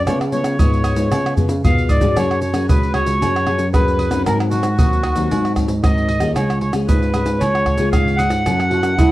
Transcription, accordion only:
0.07 C#5
0.32 C#5
1.65 F5
1.90 D5
2.17 C#5
2.41 C#5
2.68 B4
2.94 C#5
3.74 B4
4.26 A#4
4.51 F#4
5.83 D#5
6.35 C#5
6.60 C#5
6.87 B4
7.39 C#5
7.92 F5
8.17 F#5

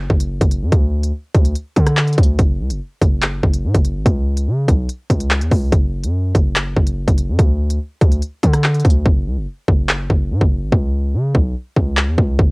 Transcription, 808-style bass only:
0.10 F#1
0.41 F#1
0.62 F#2
0.72 D2
1.35 D2
1.76 D3
2.18 D2
2.39 F#1
2.60 C#2
2.70 F#1
3.01 F#1
3.43 F#1
3.64 A2
3.74 F#1
3.95 G#1
4.06 C#2
4.47 C#3
4.68 B1
5.10 C#2
5.41 E2
5.51 C#2
5.72 F#1
6.04 F#2
6.35 F#1
6.77 F#1
7.08 F#1
7.29 F#2
7.39 D2
8.01 D2
8.43 D3
8.85 D2
9.06 F#1
9.26 C#2
9.37 F#1
9.68 F#1
10.10 F#1
10.31 A2
10.41 F#1
10.62 G#1
10.72 C#2
11.14 C#3
11.35 B1
11.77 C#2
12.08 E2
12.18 C#2
12.39 F#1

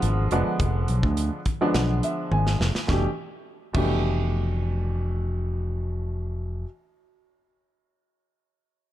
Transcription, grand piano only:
Already playing: D3 F3 G#3 B3 F4
0.32 D3 F3 G#3 B3 D4
1.61 D3 F3 G#3 B3 D4
2.04 E5
2.32 G#5
2.87 B2 E3 A3 D4
2.92 G4
3.73 B2 E3 A3 D4 G4

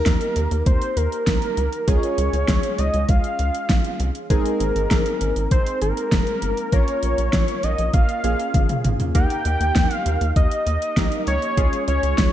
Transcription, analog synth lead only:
Already playing: A#4
0.67 C5
0.97 A#4
1.88 C#5
2.79 D#5
3.09 F5
4.30 A#4
5.52 C5
5.82 A#4
6.73 C#5
7.64 D#5
7.94 F5
9.15 G5
9.95 F5
10.36 D#5
11.28 C#5
11.88 C#5

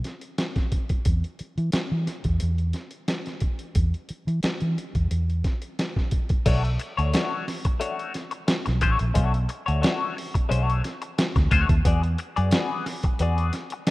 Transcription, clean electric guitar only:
6.46 A3 D4 F#4 C#5
6.64 muted clean electric guitar stroke
6.80 muted clean electric guitar stroke
6.97 A3 D4 F#4 C#5
7.13 A3 D4 F#4 C#5
7.47 muted clean electric guitar stroke
7.65 muted clean electric guitar stroke
7.80 A3 D4 F#4 C#5
8.15 muted clean electric guitar stroke
8.31 muted clean electric guitar stroke
8.47 muted clean electric guitar stroke
8.66 muted clean electric guitar stroke
8.81 A3 D4 F#4 C#5
8.99 muted clean electric guitar stroke
9.14 A3 D4 F#4 C#5
9.33 muted clean electric guitar stroke
9.49 muted clean electric guitar stroke
9.66 A3 D4 F#4 C#5
9.81 A3 D4 F#4 C#5
10.16 muted clean electric guitar stroke
10.34 muted clean electric guitar stroke
10.49 G#3 C#4 F4 C5
10.62 A3 D4 F#4 C#5
10.83 muted clean electric guitar stroke
11.02 muted clean electric guitar stroke
11.18 muted clean electric guitar stroke
11.36 muted clean electric guitar stroke
11.51 A3 D4 F#4 C#5
11.69 muted clean electric guitar stroke
11.85 B3 F#4 G#4 D5
12.03 muted clean electric guitar stroke
12.19 muted clean electric guitar stroke
12.36 B3 F#4 G#4 D5
12.53 B3 F#4 G#4 D5
12.86 muted clean electric guitar stroke
13.04 muted clean electric guitar stroke
13.21 B3 F#4 G#4 D5
13.54 muted clean electric guitar stroke
13.72 muted clean electric guitar stroke
13.87 muted clean electric guitar stroke

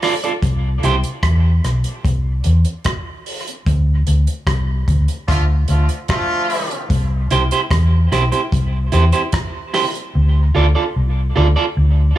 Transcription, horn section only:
5.27 D3 F3 A3 F4
5.69 D3 F3 A3 F4
6.09 D3 F3 A3 F4

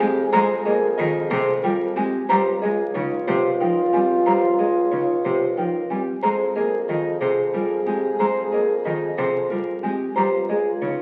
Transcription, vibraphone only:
0.00 C4
0.32 G#4
0.65 A#4
0.98 F4
1.30 G#4
1.63 F4
1.96 C4
2.29 G4
2.62 G#4
2.95 D#4
3.27 G4
3.60 D#4
3.93 C4
4.26 G4
4.58 G#4
4.91 D#4
5.24 G4
5.57 D#4
5.90 C4
6.23 G#4
6.55 A#4
6.88 F4
7.21 G#4
7.54 F4
7.86 C4
8.19 G#4
8.52 A#4
8.85 F4
9.17 G#4
9.50 F4
9.83 C4
10.16 G4
10.48 G#4
10.81 D#4

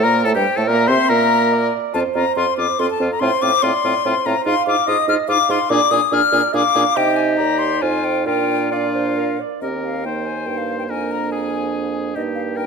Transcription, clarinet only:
Already playing: C5
0.68 E5
1.53 D5
1.95 C5
2.79 A4
3.21 C5
3.63 D5
4.05 C5
4.47 F5
4.87 D#5
5.28 F5
5.70 D5
6.11 D5
6.54 F5
6.96 D#5
7.39 D5
7.82 C5
8.26 A#4
8.71 D5
8.94 C5
9.17 A#4
9.40 D5
9.62 G4
10.05 D#4
10.47 D#4
10.89 D4
12.16 D#4
12.57 D#4

